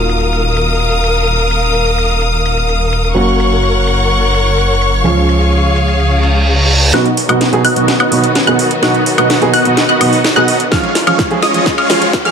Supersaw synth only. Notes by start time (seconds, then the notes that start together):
6.94 B3 D#4 F#4 D#5 F#5
7.29 B3 D#4 F#4 D#5 F#5
7.65 B3 D#4 F#4 D#5 F#5
8.00 B3 D#4 F#4 D#5 F#5
8.47 B3 D#4 F#4 D#5 F#5
8.83 B3 D#4 F#4 D#5 F#5
9.18 B3 D#4 F#4 D#5 F#5
9.54 B3 D#4 F#4 D#5 F#5
9.89 B3 D#4 F#4 D#5 F#5
10.36 B3 D#4 F#4 D#5 F#5
10.72 G#3 C#4 F4 C#5 F5
11.07 G#3 C#4 F4 C#5 F5
11.43 G#3 C#4 F4 C#5 D#5
11.78 G#3 C#4 F4 C#5 F5
12.25 G#3 C#4 F4 C#5 F5